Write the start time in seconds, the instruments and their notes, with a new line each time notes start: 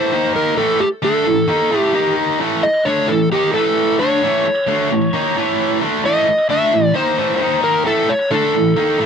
Already playing: distorted electric guitar A2 E3 A3, electric slide guitar C5
0.12 distorted electric guitar D#3 A#3 D#4
0.36 electric slide guitar A#4
0.57 distorted electric guitar A2 E3 A3, electric slide guitar A4
0.80 electric slide guitar G4, muted distorted electric guitar stroke
1.02 distorted electric guitar D3 A3 D4, electric slide guitar A4
1.26 distorted electric guitar A2 E3
1.48 distorted electric guitar D#3 A#3 D#4
1.71 distorted electric guitar A2 E3 A3
1.80 electric slide guitar G4
1.93 distorted electric guitar D#3 A#3 D#4
2.40 distorted electric guitar A2 E3 A3
2.63 electric slide guitar D#5, muted distorted electric guitar stroke
2.85 distorted electric guitar D3 A3 D4, electric slide guitar C#5
3.08 distorted electric guitar A2 E3, electric slide guitar A4
3.32 distorted electric guitar D#3 A#3 D#4, electric slide guitar G4
3.54 distorted electric guitar A2 E3 A3, electric slide guitar A4
3.99 distorted electric guitar D3 A3 D4, electric slide guitar C#5
4.23 distorted electric guitar A2 E3 A3
4.46 muted distorted electric guitar stroke
4.68 distorted electric guitar D3 A3 D4
4.91 distorted electric guitar A2 E3
5.13 distorted electric guitar D#3 A#3 D#4
5.36 distorted electric guitar A2 E3 A3
5.81 distorted electric guitar D3 A3 D4
6.04 distorted electric guitar A2 E3 A3, electric slide guitar D#5
6.27 muted distorted electric guitar stroke
6.49 distorted electric guitar D3 A3 D4, electric slide guitar E5
6.72 distorted electric guitar A2 E3
6.94 distorted electric guitar D#3 A#3 D#4, electric slide guitar C5
7.17 distorted electric guitar A2 E3 A3
7.39 distorted electric guitar D#3 A#3 D#4
7.64 electric slide guitar A#4
7.85 distorted electric guitar A2 E3 A3, electric slide guitar A4
8.09 electric slide guitar C#5, muted distorted electric guitar stroke
8.31 distorted electric guitar D3 A3 D4, electric slide guitar A4
8.54 distorted electric guitar A2 E3
8.76 distorted electric guitar D#3 A#3 D#4
8.99 distorted electric guitar A2 E3 A3